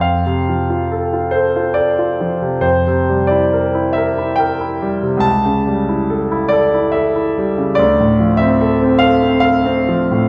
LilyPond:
\new Staff \with { instrumentName = "Grand piano" } { \time 3/4 \key f \major \tempo 4 = 70 << { f''4. c''8 d''4 | c''8. d''8. e''8 g''4 | a''4. d''8 e''4 | d''8. e''8. f''8 f''4 | } \\ { f,16 c16 f16 f'16 a'16 f'16 a'16 f'16 a'16 f'16 f16 c16 | f,16 c16 g16 e'16 bes'16 e'16 bes'16 e'16 bes'16 e'16 g16 c16 | cis,16 cis16 g16 e'16 a'16 e'16 a'16 e'16 a'16 e'16 g16 cis16 | d,16 a,16 f16 c'16 a'16 c'16 a'16 c'16 a'16 c'16 f16 a,16 | } >> }